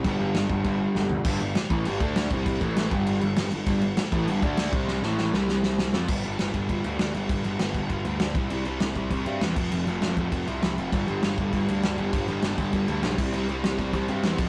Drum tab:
CC |x-x-x---|xxxxxxxx|xxxxxxxx|xxxxxxxx|
SD |--o---o-|--o---o-|--o---o-|--o---o-|
FT |-------o|--------|--------|--------|
BD |o--oo---|o--o-o-o|oo-o----|o--o-o-o|

CC |--------|xxxxxxxx|xxxxxxxx|xxxxxxxx|
SD |oooooooo|--o---o-|--o---o-|--o---o-|
FT |--------|--------|--------|--------|
BD |--------|o--oo---|o--oo--o|---oo--o|

CC |xxxxxxxx|xxxxxxxx|xxxxxxxx|xxxxxxxx|
SD |--o---o-|--o---o-|--o---o-|--o---o-|
FT |--------|--------|--------|--------|
BD |---oo---|o--oo---|o--oo--o|---oo--o|